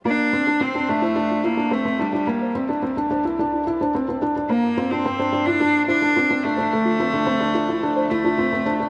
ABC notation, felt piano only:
X:1
M:4/4
L:1/16
Q:1/4=108
K:F
V:1 name="Felt piano"
B,2 C D C D D E D2 E D C C D D | B,2 C D C D D E D2 E D C C D D | B,2 C D C D D E D2 E D C C D D | A,2 C D C D D E D2 E D C C D D |]